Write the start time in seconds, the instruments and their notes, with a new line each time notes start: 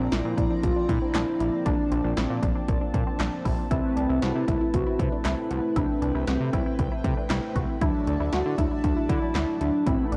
Already playing: analog polysynth F3 A#3 C4 D4, analog synth pad F3 C4 D5 A#5, soft synth lead C4
0.12 analog synth bass A#1, soft synth lead E4, synth arpeggio sound E4, snare, closed hi-hat
0.25 analog synth bass A#2
0.38 analog synth bass A#1, synth arpeggio sound D4, kick, closed hi-hat
0.50 synth arpeggio sound D4
0.63 analog synth bass A#1, soft synth lead F4, kick, closed hi-hat
0.76 synth arpeggio sound D4
0.89 analog synth bass A#2, soft synth lead E4, kick, closed hi-hat
1.02 synth arpeggio sound C4
1.15 analog synth bass A#1, synth arpeggio sound D4, snare, clap, closed hi-hat
1.40 analog synth bass A#1, synth arpeggio sound E4, closed hi-hat
1.66 analog synth bass A#1, soft synth lead D4, synth arpeggio sound D4, analog synth pad A5, kick, closed hi-hat
1.92 analog synth bass A#1, synth arpeggio sound C4, closed hi-hat
2.04 analog synth bass A#1, synth arpeggio sound D4
2.17 analog synth bass A#1, soft synth lead C4, synth arpeggio sound E4, snare, closed hi-hat
2.30 analog synth bass A#2
2.43 analog synth bass A#1, synth arpeggio sound D4, kick, closed hi-hat
2.56 synth arpeggio sound D4
2.69 analog synth bass A#1, kick, closed hi-hat
2.81 synth arpeggio sound D4
2.94 analog synth bass A#2, kick, closed hi-hat
3.07 synth arpeggio sound C4
3.20 analog synth bass A#1, synth arpeggio sound D4, snare, clap, closed hi-hat
3.45 analog synth bass A#1, synth arpeggio sound E4, kick, open hi-hat
3.71 analog synth bass C2, analog polysynth A3 C4 E4 B4, soft synth lead C4, synth arpeggio sound E4, analog synth pad E4 B4, kick, closed hi-hat
3.97 analog synth bass C2, synth arpeggio sound D4, closed hi-hat
4.09 analog synth bass C2, synth arpeggio sound E4
4.22 analog synth bass C2, soft synth lead E4, synth arpeggio sound F#4, snare, closed hi-hat
4.35 analog synth bass C3
4.48 analog synth bass C2, synth arpeggio sound E4, kick, closed hi-hat
4.61 synth arpeggio sound E4
4.74 analog synth bass C2, soft synth lead F#4, kick, closed hi-hat
4.86 synth arpeggio sound E4
4.99 analog synth bass C3, soft synth lead E4, kick, closed hi-hat
5.12 synth arpeggio sound D4
5.25 analog synth bass C2, synth arpeggio sound E4, snare, clap, closed hi-hat
5.50 analog synth bass C2, synth arpeggio sound F#4, closed hi-hat
5.76 analog synth bass C2, soft synth lead D4, synth arpeggio sound E4, analog synth pad G5, kick, closed hi-hat
6.02 analog synth bass C2, synth arpeggio sound D4, closed hi-hat
6.15 analog synth bass C2, synth arpeggio sound E4
6.27 analog synth bass C2, soft synth lead C4, synth arpeggio sound F#4, snare, closed hi-hat
6.40 analog synth bass C3
6.53 analog synth bass C2, synth arpeggio sound E4, kick, closed hi-hat
6.66 synth arpeggio sound E4
6.79 analog synth bass C2, kick, closed hi-hat
6.92 synth arpeggio sound E4
7.04 analog synth bass C3, kick, closed hi-hat
7.17 synth arpeggio sound D4
7.30 analog synth bass C2, synth arpeggio sound E4, snare, clap, closed hi-hat
7.56 analog synth bass C2, synth arpeggio sound F#4, kick, closed hi-hat
7.81 analog synth bass D2, analog polysynth F#3 A3 D4 E4, soft synth lead D4, synth arpeggio sound E4, analog synth pad F#4 D5 E5 A5, kick, closed hi-hat
8.07 analog synth bass D2, synth arpeggio sound D4, closed hi-hat
8.20 analog synth bass D2, synth arpeggio sound E4
8.32 analog synth bass D2, soft synth lead F#4, synth arpeggio sound F#4, snare, closed hi-hat
8.45 analog synth bass D3
8.58 analog synth bass D2, soft synth lead D4, synth arpeggio sound E4, kick, closed hi-hat
8.71 synth arpeggio sound E4
8.84 analog synth bass D2, soft synth lead D4, kick, closed hi-hat
8.97 synth arpeggio sound E4
9.09 analog synth bass D3, soft synth lead E4, kick, closed hi-hat
9.22 synth arpeggio sound D4
9.35 analog synth bass D2, synth arpeggio sound E4, snare, clap, closed hi-hat
9.61 analog synth bass D2, soft synth lead D4, synth arpeggio sound F#4, closed hi-hat
9.86 analog synth bass A1, analog polysynth A3 B3 C4 E4, soft synth lead C4, synth arpeggio sound E4, analog synth pad A4 B4 E5 B5, kick, closed hi-hat
10.05 soft synth lead E4
10.12 analog synth bass A1, soft synth lead D4, synth arpeggio sound D4, closed hi-hat